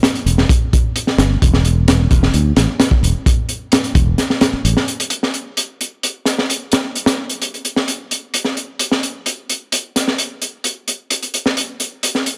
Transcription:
0.03 snare, closed hi-hat
0.15 closed hi-hat
0.26 fingered electric bass E1, closed hi-hat
0.38 snare
0.49 kick, closed hi-hat
0.73 kick, closed hi-hat
0.96 closed hi-hat
1.07 snare
1.18 fingered electric bass G1, snare, closed hi-hat
1.42 fingered electric bass E1, kick, closed hi-hat
1.54 snare
1.65 closed hi-hat
1.88 snare, closed hi-hat
2.11 kick, closed hi-hat
2.23 snare
2.34 fingered electric bass D2, closed hi-hat
2.56 fingered electric bass A1, snare, closed hi-hat
2.80 snare, closed hi-hat
2.91 kick
3.03 fingered electric bass E1, closed hi-hat
3.26 kick, closed hi-hat
3.49 closed hi-hat
3.72 snare, closed hi-hat
3.84 closed hi-hat
3.95 fingered electric bass E1, kick, closed hi-hat
4.18 snare, closed hi-hat
4.30 snare
4.41 snare, closed hi-hat
4.53 muted fingered electric bass stroke
4.65 fingered electric bass A1, closed hi-hat
4.77 snare
4.88 closed hi-hat
5.00 closed hi-hat
5.10 closed hi-hat
5.23 snare
5.34 closed hi-hat
5.57 closed hi-hat
5.81 closed hi-hat
6.03 closed hi-hat
6.25 snare, closed hi-hat
6.38 snare
6.50 closed hi-hat
6.72 snare, closed hi-hat
6.95 closed hi-hat
7.06 snare, closed hi-hat
7.29 closed hi-hat
7.42 closed hi-hat
7.54 closed hi-hat
7.65 closed hi-hat
7.76 snare
7.88 closed hi-hat
8.11 closed hi-hat
8.34 closed hi-hat
8.45 snare
8.57 closed hi-hat
8.79 closed hi-hat
8.92 snare
9.03 closed hi-hat
9.26 closed hi-hat
9.49 closed hi-hat
9.72 closed hi-hat
9.96 snare, closed hi-hat
10.08 snare
10.18 closed hi-hat
10.42 closed hi-hat
10.64 closed hi-hat
10.88 closed hi-hat
11.10 closed hi-hat
11.23 closed hi-hat
11.34 closed hi-hat
11.46 snare
11.57 closed hi-hat
11.80 closed hi-hat
12.03 closed hi-hat
12.15 snare
12.26 closed hi-hat

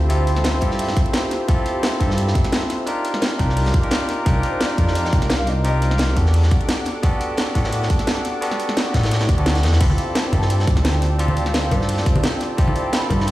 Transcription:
Already playing: detuned saw bass D2, tine electric piano C4 E4 F4 G4 A4, analog synth pad G4 C5 E5, soft synth lead E5
0.09 tine electric piano C4 E4 F4 G4 A4, soft synth lead C5, closed hi-hat
0.27 closed hi-hat
0.36 snare
0.44 snare, closed hi-hat
0.61 detuned saw bass G2, tine electric piano C4 E4 F4 G4 A4, kick, closed hi-hat
0.71 snare
0.79 closed hi-hat, open hi-hat
0.88 snare
0.97 kick, closed hi-hat
1.06 closed hi-hat
1.13 snare, closed hi-hat
1.31 snare, closed hi-hat
1.47 tine electric piano C4 E4 F4 G4 A4, kick, closed hi-hat
1.66 closed hi-hat
1.83 snare, closed hi-hat
2.00 detuned saw bass G2, tine electric piano C4 E4 F4 G4 A4, kick, closed hi-hat
2.10 snare
2.18 closed hi-hat
2.27 snare
2.35 kick, closed hi-hat
2.44 snare, closed hi-hat
2.52 snare, closed hi-hat
2.62 snare
2.70 snare, closed hi-hat
2.86 tine electric piano D4 D#4 F4 G4 A#4, analog synth pad A#4 D6, closed hi-hat
3.05 closed hi-hat
3.14 snare
3.22 snare, closed hi-hat
3.38 detuned saw bass C2, tine electric piano D4 D#4 F4 G4 A#4, kick, closed hi-hat
3.49 snare
3.57 closed hi-hat, open hi-hat
3.66 snare
3.74 kick, closed hi-hat
3.82 tine electric piano D4 D#4 F4 G4 A#4, closed hi-hat
3.91 snare, closed hi-hat
4.09 snare, closed hi-hat
4.25 detuned saw bass C2, tine electric piano D4 D#4 F4 G4 A#4, kick, closed hi-hat
4.43 soft synth lead C5, closed hi-hat
4.61 soft synth lead D5, snare, closed hi-hat
4.77 detuned saw bass F2, tine electric piano D4 D#4 F4 G4 A#4, kick, closed hi-hat
4.87 snare
4.95 soft synth lead D#5, closed hi-hat
5.05 snare
5.13 detuned saw bass C2, soft synth lead G5, kick, closed hi-hat
5.22 snare, closed hi-hat
5.30 soft synth lead F5, snare, closed hi-hat
5.39 snare
5.47 soft synth lead D#5, snare, closed hi-hat
5.64 tine electric piano C4 D#4 F4 G4 A#4, soft synth lead D#5, closed hi-hat
5.82 closed hi-hat
5.91 snare
5.98 snare, closed hi-hat
6.16 detuned saw bass E2, tine electric piano B3 D4 F#4 G4 A4, analog synth pad A4 F#5, kick, closed hi-hat
6.26 snare
6.33 closed hi-hat, open hi-hat
6.43 snare
6.51 kick, closed hi-hat
6.61 closed hi-hat
6.69 snare, closed hi-hat
6.86 snare, closed hi-hat
7.02 tine electric piano B3 D4 F#4 G4 A4, kick, closed hi-hat
7.21 closed hi-hat
7.37 snare, closed hi-hat
7.54 detuned saw bass A2, tine electric piano B3 D4 F#4 G4 A4, kick, closed hi-hat
7.64 snare
7.73 closed hi-hat
7.83 snare
7.90 kick, closed hi-hat
7.99 snare, closed hi-hat
8.07 snare, closed hi-hat
8.17 snare
8.25 snare, closed hi-hat
8.41 tine electric piano B3 D4 F#4 G4 A4, closed hi-hat
8.51 snare
8.60 closed hi-hat
8.69 snare
8.77 snare, closed hi-hat
8.93 detuned saw bass A2, tine electric piano B3 D4 F#4 G4 A4, kick, snare, closed hi-hat
9.03 snare, closed hi-hat
9.11 snare, closed hi-hat
9.21 snare, closed hi-hat
9.29 detuned saw bass D2, kick, closed hi-hat
9.37 tine electric piano B3 D4 F#4 G4 A4, closed hi-hat
9.46 snare, closed hi-hat
9.55 snare, closed hi-hat
9.63 detuned saw bass E2, snare, closed hi-hat
9.73 snare, closed hi-hat
9.80 detuned saw bass D2, tine electric piano C4 E4 F4 G4 A4, analog synth pad C5 D5 G5, kick, closed hi-hat, crash
9.90 high conga
9.98 soft synth lead F5, closed hi-hat
10.15 soft synth lead A5, snare, closed hi-hat
10.32 detuned saw bass G2, tine electric piano C4 E4 F4 G4 A4, kick, closed hi-hat, high bongo, high conga
10.42 snare, high bongo
10.50 soft synth lead G5, closed hi-hat
10.59 snare
10.67 detuned saw bass D2, kick, closed hi-hat
10.76 snare, closed hi-hat, high conga
10.85 snare, closed hi-hat
10.94 snare
11.02 snare, closed hi-hat
11.18 tine electric piano C4 D4 F4 G4 A4, soft synth lead F5, closed hi-hat
11.28 high conga
11.37 closed hi-hat
11.46 snare
11.54 snare, closed hi-hat
11.70 detuned saw bass G2, tine electric piano C4 D4 F4 G4 A4, kick, closed hi-hat, high bongo, high conga
11.81 snare, high bongo
11.88 closed hi-hat, open hi-hat
11.98 snare
12.06 kick, closed hi-hat
12.16 closed hi-hat, high conga
12.23 snare, closed hi-hat
12.40 snare, closed hi-hat
12.57 tine electric piano C4 E4 F4 G4 A4, kick, closed hi-hat
12.68 high conga
12.75 soft synth lead G5, closed hi-hat
12.92 soft synth lead B5, snare, closed hi-hat
13.09 detuned saw bass G2, tine electric piano C4 E4 F4 G4 A4, kick, closed hi-hat, high bongo, high conga
13.20 snare, high bongo
13.27 soft synth lead A5, closed hi-hat

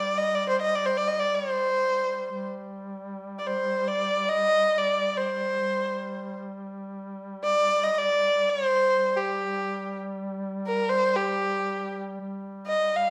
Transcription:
Already playing: duduk G3, kamancheh D5
0.17 kamancheh D#5
0.35 kamancheh D5
0.49 kamancheh C5
0.62 kamancheh D#5
0.75 kamancheh D5
0.86 kamancheh C5
0.97 kamancheh D5
1.07 kamancheh D#5
1.20 kamancheh D5
1.35 kamancheh C5
2.32 duduk G3
3.39 kamancheh D5
3.47 kamancheh C5
3.88 kamancheh D5
4.29 kamancheh D#5
4.78 kamancheh D5
5.17 kamancheh C5
5.60 duduk G3
7.44 kamancheh D5
7.83 kamancheh D#5
7.98 kamancheh D5
8.49 kamancheh C5
8.89 duduk G3
9.17 kamancheh G4
10.67 kamancheh A#4
10.89 kamancheh C5
11.15 kamancheh G4
12.20 duduk G3
12.66 kamancheh D#5
12.96 kamancheh F5

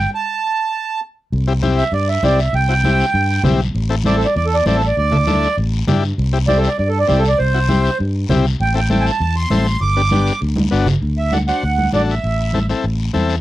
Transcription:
Already playing: accordion G5
0.15 accordion A5
1.32 fingered electric bass C2, high conga, long guiro
1.47 transistor combo organ C4 E4 G4
1.62 transistor combo organ C4 E4 G4, high conga, short guiro
1.78 accordion E5, short guiro
1.92 fingered electric bass G2, accordion D5, high conga, long guiro
2.09 accordion E5
2.23 fingered electric bass C2, transistor combo organ C4 E4 G4, accordion D5, high conga, short guiro
2.39 accordion E5, short guiro
2.53 fingered electric bass C2, accordion G5, high conga, long guiro
2.68 transistor combo organ C4 E4 F#4
2.84 transistor combo organ C4 E4 G4, high conga, short guiro
3.00 short guiro
3.14 fingered electric bass G2, high conga, long guiro
3.44 fingered electric bass B1, transistor combo organ C4 E4 G4, high conga, low conga, short guiro
3.61 short guiro
3.75 fingered electric bass A1, high conga, long guiro
3.89 transistor combo organ C4 E4 A4
4.04 transistor combo organ C4 E4 A4, accordion D5, high conga, short guiro
4.17 accordion A4
4.21 accordion D5, short guiro
4.36 fingered electric bass E2, accordion D5, high conga, long guiro
4.46 accordion A4
4.55 accordion D5
4.66 fingered electric bass A1, transistor combo organ C4 E4 A4, accordion D5, high conga, short guiro
4.76 accordion A4
4.82 short guiro
4.87 accordion D5
4.97 fingered electric bass D2, accordion D5, high conga, long guiro
5.11 transistor combo organ D4 E4 A4, low conga
5.27 transistor combo organ D4 E4 A4, high conga, short guiro
5.43 short guiro
5.58 fingered electric bass A1, high conga, long guiro
5.87 fingered electric bass G2, transistor combo organ D4 E4 G4, high conga, low conga, short guiro
6.04 short guiro
6.18 fingered electric bass C2, high conga, long guiro
6.33 transistor combo organ C4 E4 G4
6.48 transistor combo organ C4 E4 G4, accordion D5, high conga, short guiro
6.58 accordion A4
6.64 accordion D5, short guiro
6.78 fingered electric bass G2, accordion D5, high conga, long guiro
6.89 accordion A4
6.99 accordion D5
7.08 fingered electric bass C2, transistor combo organ C4 E4 G4, accordion D5, high conga, short guiro
7.19 accordion A4
7.25 accordion D5, short guiro
7.38 fingered electric bass C2, accordion C5, high conga, long guiro
7.54 transistor combo organ C4 E4 F#4
7.69 transistor combo organ C4 E4 G4, high conga, short guiro
7.85 short guiro
7.99 fingered electric bass G2, high conga, long guiro
8.29 fingered electric bass C2, transistor combo organ C4 E4 G4, high conga, low conga, short guiro
8.46 short guiro
8.60 fingered electric bass A1, accordion G5, high conga, long guiro
8.74 transistor combo organ C4 E4 A4, accordion G5
8.90 transistor combo organ C4 E4 A4, accordion G5, high conga, short guiro
9.01 accordion G#5
9.05 accordion A5, short guiro
9.20 fingered electric bass E2, high conga, long guiro
9.36 accordion C6
9.50 fingered electric bass A1, transistor combo organ C4 E4 A4, high conga, short guiro
9.67 short guiro
9.81 fingered electric bass G1, accordion D6, high conga, long guiro
9.96 transistor combo organ B3 D4 G4
10.11 transistor combo organ B3 D4 G4, high conga, short guiro
10.27 short guiro
10.41 fingered electric bass D2, high conga, long guiro
10.56 high conga
10.71 fingered electric bass G1, transistor combo organ B3 D4 F#4, short guiro
10.87 low conga, short guiro
11.02 fingered electric bass D2, long guiro
11.18 accordion E5
11.32 transistor combo organ D4 F#4 A4, accordion F#5, high conga, short guiro
11.48 transistor combo organ D4 F#4 C5, accordion F#5, short guiro
11.63 fingered electric bass D2, long guiro
11.78 high conga
11.93 fingered electric bass A1, transistor combo organ D4 F#4 A4, accordion D5, high conga, short guiro
12.10 accordion E5, short guiro
12.24 fingered electric bass A1, long guiro
12.53 transistor combo organ C4 E4 A4, high conga, short guiro
12.69 transistor combo organ C4 E4 A4, short guiro
12.84 fingered electric bass A1, long guiro
13.14 fingered electric bass E2, transistor combo organ C4 E4 A4, high conga, short guiro
13.29 short guiro

